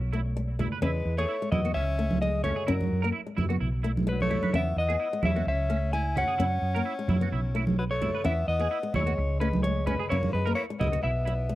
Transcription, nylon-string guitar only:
0.13 A3
0.37 G#3
0.59 G#3
0.82 C#4
1.18 B3
1.42 G#3
1.65 B3
1.99 A3
2.22 G#3
2.44 G#3
2.68 C#4
3.04 A#3
3.27 G#3
3.50 B3
3.84 A3
4.07 G#3
4.31 G#3
4.54 C#4
4.90 B3
5.13 G#3
5.36 B3
5.70 A3
5.93 G#3
6.17 muted nylon-string guitar stroke
6.40 C#4
6.76 A#3
6.99 G#3
7.21 B3
7.55 A3
8.02 G#3
8.24 C#4
8.59 B3
8.83 G#3
9.07 B3
9.41 A3
9.64 G#3
9.87 G#3
10.12 C#4
10.47 A#3
10.70 G#3
10.93 muted nylon-string guitar stroke
11.27 F#3
11.49 G#3

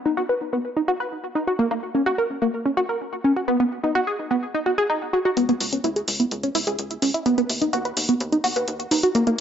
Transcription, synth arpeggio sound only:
0.06 D#4
0.17 F#4
0.29 B4
0.53 B3
0.77 D#4
0.88 F#4
1.00 B4
1.35 D#4
1.47 F#4
1.59 A#3
1.71 A#3
1.95 C#4
2.06 F#4
2.18 A#4
2.42 A#3
2.66 C#4
2.77 F#4
2.89 A#4
3.24 C#4
3.36 F#4
3.48 B3
3.60 B3
3.84 D#4
3.95 F#4
4.07 G#4
4.31 B3
4.54 D#4
4.66 F#4
4.78 G#4
4.90 D#4
5.13 F#4
5.25 F#4
5.37 B3
5.49 B3
5.73 C#4
5.84 E4
5.96 G#4
6.20 B3
6.43 C#4
6.55 E4
6.67 G#4
7.02 C#4
7.14 E4
7.26 B3
7.38 B3
7.62 D#4
7.73 F#4
7.85 B4
8.09 B3
8.32 D#4
8.44 F#4
8.56 B4
8.91 D#4
9.03 F#4
9.15 A#3
9.27 A#3

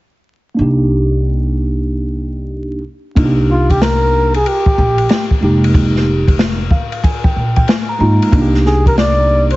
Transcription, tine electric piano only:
0.54 A#3 D4
0.59 D#4 G4
3.15 A#3 D4 D#4 F4
3.25 G4
5.41 G#3 A#3 D#4 G4
6.71 F5
6.92 F5
7.04 G#5
7.24 G5
7.56 G5
7.69 G#5
7.89 A#5
7.99 G#3 A#3 D#4 F4 A#5
8.32 A#3 D4 D#4 F4
8.42 G4

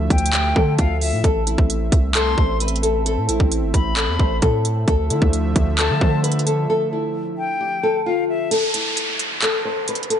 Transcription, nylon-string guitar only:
Already playing: E4
0.33 G4
0.56 A4
0.79 F4
1.24 A4
1.47 E4
2.15 A4
2.38 C5
2.61 B4
2.83 A4
3.06 A4
3.29 E4
3.96 A4
4.19 C5
4.42 A4
4.88 A4
5.10 E4
5.79 A4
6.02 C5
6.24 B4
6.46 A4
6.70 A4
6.93 E4
7.61 G4
7.83 A4
8.06 F4
8.51 A4
8.74 E4
9.43 A4
9.65 C5
9.89 B4
10.10 A4

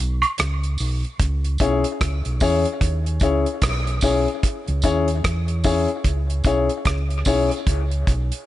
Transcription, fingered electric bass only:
0.00 B1
0.39 C#2
0.80 B1
1.20 C#2
1.61 B1
2.01 C#2
2.26 B1
2.42 E2
2.81 D#2
3.22 C#2
3.63 B1
4.03 B1
4.68 C#2
4.84 D#2
5.25 E2
6.05 C#2
6.45 B1
6.86 C#2
7.27 B1
7.67 C#2
8.08 B1

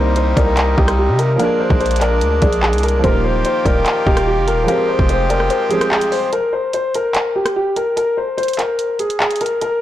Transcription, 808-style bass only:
Already playing: C2
0.37 C2
0.78 C2
1.09 C3
1.70 A#1
2.22 D2
2.42 A#1
2.73 C2
3.04 D#1
3.35 D1
3.65 D#1
4.07 D#1
4.37 F1
4.53 D#1
4.99 F1

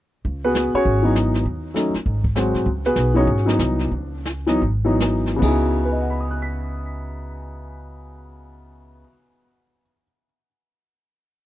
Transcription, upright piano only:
0.44 B3 F#4 G#4 B4
0.75 C#4 F#4 G#4 C#5
1.02 E3 F#3 B3 D#4
1.74 F#3 A3 C#4 D#4
2.35 F#3 G#3 C4 F#4
2.86 B3 F#4 G#4 B4
3.14 E3 F#3 B3 C#4 D#4 F#4 G#4 C#5
3.45 E3 F#3 B3 D#4
4.47 E3 F#3 B3 D#4
4.85 E3 F#3 B3 D#4
5.36 C#3 B3
5.42 D#4 E4 G#4
5.48 F#4
5.85 B4
5.92 D#5
6.01 F#5
6.10 B5
6.20 D#6
6.31 F#6
6.42 B6

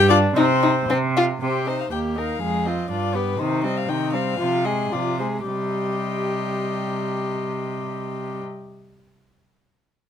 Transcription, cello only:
Already playing: G2
0.36 C3
0.89 C3
1.42 C3
1.92 D#2
2.41 F2
2.90 G2
3.40 C3
3.89 C3
4.39 C3
4.92 C3
5.47 C3

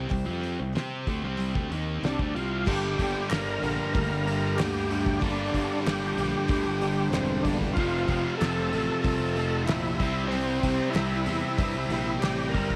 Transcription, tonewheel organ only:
2.05 D4
2.35 F4
2.67 G4
3.29 A#4
3.94 A#4
4.56 G4
5.19 D4
5.83 G4
7.10 C4
7.43 D4
7.73 F4
8.37 A4
9.02 A4
9.64 E4
10.28 C4
10.90 E4
12.19 G4
12.49 A#4

